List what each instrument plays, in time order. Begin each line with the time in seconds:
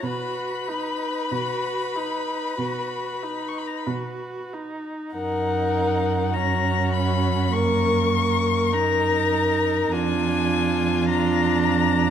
0.03 cello B2, viola F#4, violin B4 B5
0.68 viola D#4
1.32 cello B2, viola F#4
1.96 viola D#4
2.59 cello B2, viola F#4
3.23 viola D#4
3.48 violin C#6
3.58 violin B5
3.67 violin A#5
3.78 violin B5
3.87 cello B2, viola F#4
4.53 viola D#4
5.14 cello F#2, viola D#4, violin A#4 F#5
6.34 viola C#4, violin F#4 A#5
6.94 violin B5
7.53 viola A#3, violin A#4 C#6
8.16 violin A#4
8.73 viola D#4, violin A#5
9.91 cello F2, viola D4, violin F4 G#5
11.09 viola D4, violin A#5